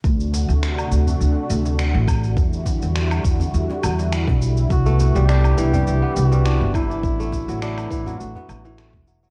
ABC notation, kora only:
X:1
M:4/4
L:1/16
Q:"Swing 16ths" 1/4=103
K:Dmix
V:1 name="Kora" clef=bass
z16 | z16 | z A, z G, D2 E, G,2 B,2 G, D2 E, D | z A, z F, D2 E, F,2 B, z E, A, z F, F, |]